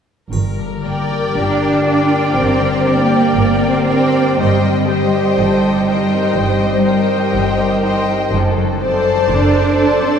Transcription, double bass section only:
0.32 G1
1.37 G1
2.37 G1
3.35 G1
4.38 G1
5.39 G1
6.36 G1
7.34 G1
8.32 F#1
9.29 F#1

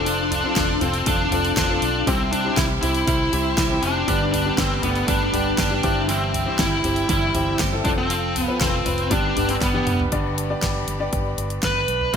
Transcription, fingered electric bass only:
Already playing: F1
0.56 F1
0.82 F1
1.07 F1
1.31 F1
1.57 F1
1.82 B1
2.07 C2
2.57 C2
2.83 C2
3.07 C2
3.33 C2
3.57 C2
3.83 F1
4.08 G1
4.58 G1
4.83 G1
5.08 G1
5.34 G1
5.58 G1
5.84 G1
6.59 G1
6.84 G1
7.09 G1
7.34 G1
7.60 G1
7.85 F1
8.61 F1
8.86 F1
9.11 G1
9.36 G1
9.62 G1
9.87 F1
10.12 G1
10.63 G1
10.88 G1
11.13 G1
11.38 G1
11.63 G1
11.88 B1

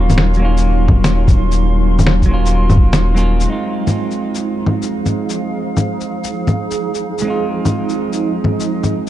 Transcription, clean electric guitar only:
Already playing: F#3 A#3 C#4 F4
0.37 F#3 A#3
0.42 C#4 F4
2.26 F#3 A#3
2.31 C#4 F4
3.15 F#3 A#3 C#4
3.19 F4
3.44 G#3 C4
3.50 D#4 F4
7.22 G#3 C4
7.27 D#4 F4

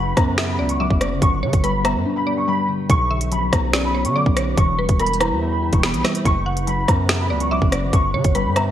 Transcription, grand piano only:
Already playing: B5
0.17 A#5
0.48 B5
0.69 C#6
0.80 D6
1.22 C#6
1.64 B5
1.85 A#5
2.16 B5
2.37 C#6
2.48 B5
2.90 C#6
3.32 B5
3.53 A#5
3.84 B5
4.05 C#6
4.16 D6
4.57 C#6
5.00 B5
5.20 A#5
5.52 B5
5.73 C#6
5.83 B5
6.26 C#6
6.67 B5
6.88 A#5
7.20 B5
7.41 C#6
7.51 D6
7.93 C#6
8.35 B5
8.56 A#5

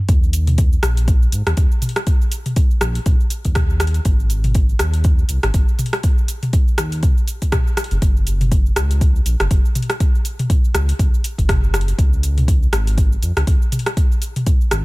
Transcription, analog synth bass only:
0.09 D#2
0.83 A#1
1.33 G#2
1.47 D#2
1.57 D#2
2.81 A#1
3.06 A#1
3.45 D#2
4.05 G#1
4.80 D#2
5.29 C2
5.44 G#1
5.54 G#1
6.78 D#2
7.03 C2
7.91 F#1
8.02 F#1
8.76 C#2
9.26 A#1
9.40 F#1
9.51 F#1
10.74 C#2
10.99 C#2
11.38 F#1
11.99 C#2
12.73 G#1
13.22 F2
13.37 C#2
13.47 C#2
14.72 G#1

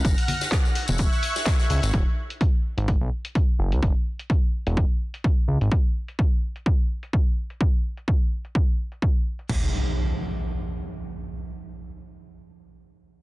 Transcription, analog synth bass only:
0.05 F#1
0.89 E1
1.70 C#2
1.83 G#1
1.94 D#1
2.77 G#1
3.01 B1
3.59 F#1
3.72 C#2
3.83 F#1
4.67 E1
5.48 C#2
5.61 G#1

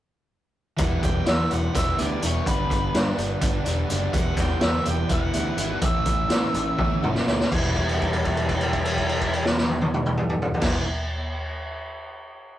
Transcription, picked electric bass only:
0.79 E1
1.03 E1
1.28 E2
1.51 E1
1.75 E1
1.99 D2
2.23 E1
2.46 G1
2.70 G1
2.95 G2
3.18 G1
3.42 G1
3.66 E1
3.90 F#1
4.13 E1
4.37 E1
4.61 E2
4.86 E1
5.10 E1
5.34 D2
5.57 G#1
5.82 A1
6.06 A1
6.30 A2
6.54 A1
6.79 A1
7.03 G1
7.27 D2
7.52 E1
10.62 E1

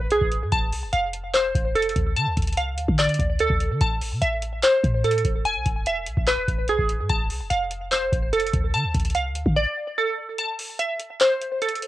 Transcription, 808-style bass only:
Already playing: E1
0.11 B1
0.21 E1
0.42 G#2
0.52 F1
0.73 C2
0.83 F1
0.93 F1
1.34 E1
1.45 F1
1.55 F1
1.96 D2
2.17 D3
2.27 D2
2.37 D2
2.58 C2
2.73 D2
2.88 D3
3.19 D2
3.50 D2
3.71 D3
3.81 A1
4.12 C3
4.22 A1
4.84 A2
5.25 E1
5.56 B1
5.66 E1
6.07 B1
6.17 E1
6.48 E1
6.68 B1
6.79 E1
6.99 G#2
7.10 F1
7.30 C2
7.40 F1
7.51 F1
7.92 E1
8.02 F1
8.12 F1
8.54 D2
8.74 D3
8.84 D2
8.95 D2
9.15 C2
9.31 D2
9.46 D3

